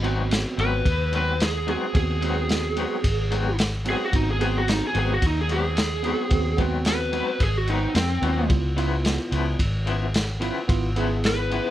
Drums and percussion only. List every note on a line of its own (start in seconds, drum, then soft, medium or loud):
0.04 ride medium
0.31 snare medium
0.31 ride medium
0.59 ride medium
0.85 kick medium
0.85 ride medium
1.13 ride medium
1.40 snare loud
1.40 ride medium
1.68 ride medium
1.95 kick loud
1.95 ride medium
2.22 ride medium
2.49 snare medium
2.49 ride medium
2.77 ride medium
3.04 kick medium
3.04 ride medium
3.32 ride medium
3.59 snare loud
3.59 ride medium
3.85 ride medium
4.13 kick loud
4.13 ride medium
4.41 ride medium
4.68 snare loud
4.68 ride medium
4.95 ride medium
5.22 kick medium
5.22 ride medium
5.49 ride medium
5.77 snare loud
5.77 ride medium
6.04 ride medium
6.30 kick medium
6.30 ride medium
6.58 kick medium
6.58 ride medium
6.85 snare loud
6.85 ride medium
7.13 ride medium
7.40 kick medium
7.40 ride medium
7.68 ride medium
7.95 snare loud
7.95 ride medium
8.23 ride medium
8.50 kick loud
8.50 ride medium
8.78 ride medium
9.05 snare loud
9.05 ride medium
9.32 ride medium
9.59 kick medium
9.59 ride medium
9.87 ride medium
10.14 snare loud
10.14 ride medium
10.42 ride medium
10.69 kick loud
10.69 ride medium
10.96 ride medium
11.24 snare medium
11.24 ride medium
11.51 ride medium